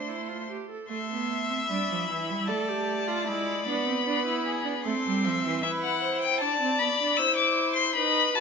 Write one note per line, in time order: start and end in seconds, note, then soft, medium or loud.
0.00 0.46 A3 medium
0.00 0.10 D4 medium
0.00 0.46 C5 medium
0.00 0.46 C6 medium
0.09 0.30 E4 medium
0.29 0.49 F4 medium
0.49 0.69 G4 medium
0.70 0.89 A4 medium
0.89 0.98 A3 medium
0.89 1.66 A3 medium
0.89 2.49 E5 medium
0.89 1.65 C6 medium
1.10 1.49 B3 medium
1.50 1.58 C4 medium
1.68 1.77 G3 medium
1.68 2.08 D4 medium
1.68 2.47 B5 medium
1.89 2.09 F3 medium
2.09 2.31 E3 medium
2.09 2.50 E4 medium
2.29 2.51 G3 medium
2.48 3.30 A3 medium
2.48 2.70 A4 medium
2.48 4.08 D5 medium
2.48 3.28 A5 medium
2.69 3.10 G4 medium
3.08 3.27 F4 medium
3.27 3.67 G#3 medium
3.27 3.66 E4 medium
3.27 4.84 B5 medium
3.67 4.83 B3 medium
3.67 3.86 D4 medium
3.87 3.95 C4 medium
4.07 4.26 D4 medium
4.07 4.46 B4 medium
4.26 4.65 E4 medium
4.46 4.86 G#4 medium
4.65 4.73 D4 medium
4.84 4.93 A3 medium
4.84 5.65 C4 loud
4.84 5.26 A4 medium
4.84 5.62 C6 medium
5.06 5.26 G3 medium
5.25 5.44 F3 medium
5.25 5.63 E5 medium
5.45 5.64 E3 medium
5.63 6.43 E4 medium
5.63 6.02 B4 medium
5.63 5.71 E5 loud
5.82 6.21 F#5 medium
6.02 6.43 C5 medium
6.21 6.40 G5 loud
6.40 6.60 D4 medium
6.40 7.20 D5 loud
6.40 6.80 A5 loud
6.61 6.80 C4 medium
6.79 6.88 B3 medium
6.79 7.19 B5 loud
7.00 7.20 D4 medium
7.17 7.97 E4 medium
7.17 7.96 C5 medium
7.17 7.36 E6 loud
7.36 7.75 D6 loud
7.76 7.95 C6 loud
7.96 8.36 D#4 medium
7.96 8.40 B4 loud
7.96 8.37 B5 loud
8.35 8.40 F#4 medium
8.35 8.40 A5 loud